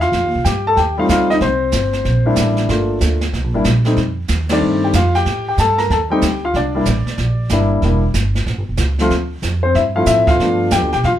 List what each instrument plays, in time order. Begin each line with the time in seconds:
Already playing: upright bass E2
0.01 grand piano F4 F5, snare
0.12 upright bass F2, brush sweep, kick, snare
0.24 upright bass D#2
0.35 upright bass C2
0.45 upright bass G2, grand piano G4 G5, kick, snare, hi-hat pedal
0.67 grand piano A4 A5
0.76 upright bass D#2, grand piano G4 G5, brush sweep, kick, snare
0.98 grand piano G3 A3 C4 D#4 F4 F5
1.09 upright bass D2, grand piano F4 F5, kick, snare, hi-hat pedal
1.30 grand piano D#4 D#5, snare
1.41 upright bass C2, grand piano C4 C5, brush sweep, kick, snare
1.72 upright bass G1, kick, snare, hi-hat pedal
1.93 snare
2.05 upright bass A#1, brush sweep, kick, snare
2.26 grand piano G3 A#3 D4 E4
2.36 upright bass A1, kick, snare, hi-hat pedal
2.57 snare
2.69 upright bass G1, grand piano A3 A#3 D4 F4, brush sweep, kick, snare
3.00 upright bass D2, kick, snare, hi-hat pedal
3.21 snare
3.33 upright bass C2, brush sweep, kick, snare
3.44 upright bass A#1
3.54 upright bass G1, grand piano G3 A#3 D4 E4
3.64 upright bass A#1, kick, snare, hi-hat pedal
3.84 grand piano G3 A3 C4 D#4, snare
3.96 upright bass F2, brush sweep, kick, snare
4.28 upright bass D#2, kick, snare, hi-hat pedal
4.49 grand piano D#3 G3 A3 C4 D5, snare, ride
4.55 grand piano D4
4.61 upright bass G2, brush sweep
4.84 grand piano G4 G5
4.93 upright bass F2, grand piano F5, kick, snare, hi-hat pedal
4.98 grand piano F4
5.15 grand piano G4 G5, snare
5.25 upright bass A2, brush sweep, kick, snare
5.48 grand piano G4 G5
5.58 upright bass G2, grand piano A4 A5, kick, snare, hi-hat pedal
5.78 grand piano A#4 A#5, snare
5.90 upright bass D#2, grand piano A4 A5, brush sweep, kick, snare
6.10 grand piano G3 A3 C4 D#4 G4 G5
6.22 upright bass D2, kick, snare, hi-hat pedal
6.45 grand piano F4 F5
6.54 upright bass C2, grand piano D4 D5, brush sweep, kick, snare
6.75 grand piano G3 A#3 D4 E4
6.85 upright bass A1, kick, snare, hi-hat pedal
7.06 muted upright bass stroke, snare
7.18 upright bass A#1, brush sweep, kick, snare
7.49 upright bass G1, grand piano G3 A#3 D4 E4, kick, snare, hi-hat pedal
7.82 upright bass E1, grand piano G3 A#3 D4 E4, brush sweep, kick, snare
8.14 upright bass G1, kick, snare, hi-hat pedal
8.35 snare
8.46 upright bass A1, brush sweep, kick, snare
8.58 upright bass G1
8.69 upright bass E1
8.77 upright bass C#2, kick, snare, hi-hat pedal
8.99 grand piano F3 A3 C4 F4, snare
9.10 upright bass D2, brush sweep, kick, snare
9.42 upright bass F2, kick, snare, hi-hat pedal
9.63 grand piano C4 C5
9.75 upright bass G2, grand piano E4 E5, brush sweep, kick, snare
9.96 grand piano F3 A3 C4 E4 F4 F5
10.06 upright bass A2, grand piano E4 E5, kick, snare, hi-hat pedal
10.27 grand piano F4 F5, kick, snare
10.39 upright bass G2, grand piano F3 A3 B3 D4, brush sweep, snare
10.71 upright bass F2, grand piano G5, kick, snare, hi-hat pedal
10.75 grand piano G4
10.82 upright bass D2
10.92 upright bass B1, grand piano G4 G5, snare
11.03 upright bass E2, grand piano F4 F5, brush sweep, kick, snare